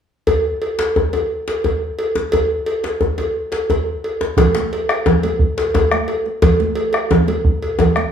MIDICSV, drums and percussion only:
0, 0, Header, 1, 4, 480
1, 0, Start_track
1, 0, Tempo, 341686
1, 384, Time_signature, 12, 3, 24, 8
1, 11406, End_track
2, 0, Start_track
2, 0, Title_t, "Bombo"
2, 6137, Note_on_c, 9, 43, 95
2, 6277, Note_off_c, 9, 43, 0
2, 6873, Note_on_c, 9, 37, 73
2, 7013, Note_off_c, 9, 37, 0
2, 7576, Note_on_c, 9, 43, 92
2, 7716, Note_off_c, 9, 43, 0
2, 8067, Note_on_c, 9, 37, 32
2, 8208, Note_off_c, 9, 37, 0
2, 8309, Note_on_c, 9, 37, 75
2, 8449, Note_off_c, 9, 37, 0
2, 8559, Note_on_c, 9, 37, 25
2, 8700, Note_off_c, 9, 37, 0
2, 9024, Note_on_c, 9, 43, 83
2, 9165, Note_off_c, 9, 43, 0
2, 9751, Note_on_c, 9, 37, 69
2, 9891, Note_off_c, 9, 37, 0
2, 10460, Note_on_c, 9, 43, 96
2, 10600, Note_off_c, 9, 43, 0
2, 10955, Note_on_c, 9, 37, 32
2, 11096, Note_off_c, 9, 37, 0
2, 11180, Note_on_c, 9, 37, 71
2, 11320, Note_off_c, 9, 37, 0
2, 11406, End_track
3, 0, Start_track
3, 0, Title_t, "Djembe"
3, 382, Note_on_c, 9, 64, 63
3, 523, Note_off_c, 9, 64, 0
3, 1106, Note_on_c, 9, 62, 55
3, 1246, Note_off_c, 9, 62, 0
3, 1351, Note_on_c, 9, 64, 66
3, 1492, Note_off_c, 9, 64, 0
3, 1594, Note_on_c, 9, 63, 51
3, 1735, Note_off_c, 9, 63, 0
3, 2074, Note_on_c, 9, 62, 44
3, 2214, Note_off_c, 9, 62, 0
3, 2311, Note_on_c, 9, 64, 60
3, 2452, Note_off_c, 9, 64, 0
3, 3028, Note_on_c, 9, 62, 44
3, 3028, Note_on_c, 9, 63, 44
3, 3168, Note_off_c, 9, 62, 0
3, 3168, Note_off_c, 9, 63, 0
3, 3280, Note_on_c, 9, 64, 58
3, 3420, Note_off_c, 9, 64, 0
3, 3990, Note_on_c, 9, 62, 48
3, 4131, Note_off_c, 9, 62, 0
3, 4224, Note_on_c, 9, 64, 60
3, 4365, Note_off_c, 9, 64, 0
3, 4467, Note_on_c, 9, 63, 52
3, 4608, Note_off_c, 9, 63, 0
3, 4950, Note_on_c, 9, 62, 43
3, 5090, Note_off_c, 9, 62, 0
3, 5194, Note_on_c, 9, 64, 64
3, 5335, Note_off_c, 9, 64, 0
3, 5913, Note_on_c, 9, 62, 42
3, 5913, Note_on_c, 9, 63, 45
3, 6053, Note_off_c, 9, 62, 0
3, 6053, Note_off_c, 9, 63, 0
3, 6148, Note_on_c, 9, 62, 21
3, 6148, Note_on_c, 9, 63, 75
3, 6148, Note_on_c, 9, 64, 74
3, 6288, Note_off_c, 9, 62, 0
3, 6288, Note_off_c, 9, 63, 0
3, 6288, Note_off_c, 9, 64, 0
3, 6387, Note_on_c, 9, 62, 58
3, 6527, Note_off_c, 9, 62, 0
3, 7108, Note_on_c, 9, 63, 77
3, 7108, Note_on_c, 9, 64, 71
3, 7248, Note_off_c, 9, 63, 0
3, 7248, Note_off_c, 9, 64, 0
3, 7836, Note_on_c, 9, 62, 49
3, 7977, Note_off_c, 9, 62, 0
3, 8076, Note_on_c, 9, 62, 23
3, 8076, Note_on_c, 9, 63, 67
3, 8076, Note_on_c, 9, 64, 69
3, 8216, Note_off_c, 9, 62, 0
3, 8216, Note_off_c, 9, 63, 0
3, 8216, Note_off_c, 9, 64, 0
3, 8794, Note_on_c, 9, 62, 23
3, 8935, Note_off_c, 9, 62, 0
3, 9025, Note_on_c, 9, 62, 25
3, 9025, Note_on_c, 9, 63, 72
3, 9025, Note_on_c, 9, 64, 71
3, 9165, Note_off_c, 9, 62, 0
3, 9165, Note_off_c, 9, 63, 0
3, 9165, Note_off_c, 9, 64, 0
3, 9986, Note_on_c, 9, 63, 73
3, 9986, Note_on_c, 9, 64, 75
3, 10126, Note_off_c, 9, 63, 0
3, 10126, Note_off_c, 9, 64, 0
3, 10939, Note_on_c, 9, 62, 21
3, 10939, Note_on_c, 9, 63, 64
3, 10939, Note_on_c, 9, 64, 66
3, 11080, Note_off_c, 9, 62, 0
3, 11080, Note_off_c, 9, 63, 0
3, 11080, Note_off_c, 9, 64, 0
3, 11406, End_track
4, 0, Start_track
4, 0, Title_t, "Drums"
4, 379, Note_on_c, 9, 56, 56
4, 520, Note_off_c, 9, 56, 0
4, 865, Note_on_c, 9, 56, 43
4, 1006, Note_off_c, 9, 56, 0
4, 1113, Note_on_c, 9, 56, 48
4, 1254, Note_off_c, 9, 56, 0
4, 1588, Note_on_c, 9, 56, 43
4, 1729, Note_off_c, 9, 56, 0
4, 2075, Note_on_c, 9, 56, 47
4, 2215, Note_off_c, 9, 56, 0
4, 2308, Note_on_c, 9, 56, 42
4, 2449, Note_off_c, 9, 56, 0
4, 2790, Note_on_c, 9, 56, 51
4, 2930, Note_off_c, 9, 56, 0
4, 3260, Note_on_c, 9, 56, 58
4, 3401, Note_off_c, 9, 56, 0
4, 3742, Note_on_c, 9, 56, 49
4, 3883, Note_off_c, 9, 56, 0
4, 3985, Note_on_c, 9, 56, 42
4, 4126, Note_off_c, 9, 56, 0
4, 4467, Note_on_c, 9, 56, 45
4, 4607, Note_off_c, 9, 56, 0
4, 4942, Note_on_c, 9, 56, 46
4, 5082, Note_off_c, 9, 56, 0
4, 5203, Note_on_c, 9, 56, 48
4, 5344, Note_off_c, 9, 56, 0
4, 5679, Note_on_c, 9, 56, 40
4, 5820, Note_off_c, 9, 56, 0
4, 6156, Note_on_c, 9, 63, 20
4, 6156, Note_on_c, 9, 64, 60
4, 6158, Note_on_c, 9, 56, 52
4, 6297, Note_off_c, 9, 63, 0
4, 6297, Note_off_c, 9, 64, 0
4, 6299, Note_off_c, 9, 56, 0
4, 6398, Note_on_c, 9, 63, 45
4, 6538, Note_off_c, 9, 63, 0
4, 6642, Note_on_c, 9, 56, 52
4, 6782, Note_off_c, 9, 56, 0
4, 6888, Note_on_c, 9, 56, 49
4, 7028, Note_off_c, 9, 56, 0
4, 7116, Note_on_c, 9, 64, 65
4, 7257, Note_off_c, 9, 64, 0
4, 7352, Note_on_c, 9, 56, 51
4, 7356, Note_on_c, 9, 63, 49
4, 7492, Note_off_c, 9, 56, 0
4, 7497, Note_off_c, 9, 63, 0
4, 7834, Note_on_c, 9, 56, 51
4, 7974, Note_off_c, 9, 56, 0
4, 8071, Note_on_c, 9, 56, 53
4, 8075, Note_on_c, 9, 63, 21
4, 8212, Note_off_c, 9, 56, 0
4, 8216, Note_off_c, 9, 63, 0
4, 8319, Note_on_c, 9, 63, 56
4, 8459, Note_off_c, 9, 63, 0
4, 8540, Note_on_c, 9, 56, 48
4, 8553, Note_on_c, 9, 63, 20
4, 8680, Note_off_c, 9, 56, 0
4, 8693, Note_off_c, 9, 63, 0
4, 8788, Note_on_c, 9, 63, 22
4, 8929, Note_off_c, 9, 63, 0
4, 9021, Note_on_c, 9, 56, 68
4, 9025, Note_on_c, 9, 63, 23
4, 9025, Note_on_c, 9, 64, 74
4, 9162, Note_off_c, 9, 56, 0
4, 9165, Note_off_c, 9, 63, 0
4, 9165, Note_off_c, 9, 64, 0
4, 9271, Note_on_c, 9, 63, 54
4, 9412, Note_off_c, 9, 63, 0
4, 9489, Note_on_c, 9, 56, 57
4, 9630, Note_off_c, 9, 56, 0
4, 9731, Note_on_c, 9, 56, 52
4, 9872, Note_off_c, 9, 56, 0
4, 9983, Note_on_c, 9, 64, 78
4, 10123, Note_off_c, 9, 64, 0
4, 10225, Note_on_c, 9, 63, 55
4, 10230, Note_on_c, 9, 56, 44
4, 10365, Note_off_c, 9, 63, 0
4, 10371, Note_off_c, 9, 56, 0
4, 10712, Note_on_c, 9, 56, 45
4, 10852, Note_off_c, 9, 56, 0
4, 10953, Note_on_c, 9, 63, 22
4, 10953, Note_on_c, 9, 64, 71
4, 10956, Note_on_c, 9, 56, 47
4, 11094, Note_off_c, 9, 63, 0
4, 11094, Note_off_c, 9, 64, 0
4, 11097, Note_off_c, 9, 56, 0
4, 11195, Note_on_c, 9, 63, 55
4, 11335, Note_off_c, 9, 63, 0
4, 11406, End_track
0, 0, End_of_file